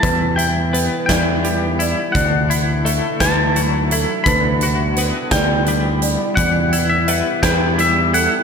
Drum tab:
HH |xxxxxx|xxxxxx|xxxxxx|xxxxxx|
SD |---o--|---o--|---o--|---o--|
BD |o--o--|o--o--|o--o--|o--o--|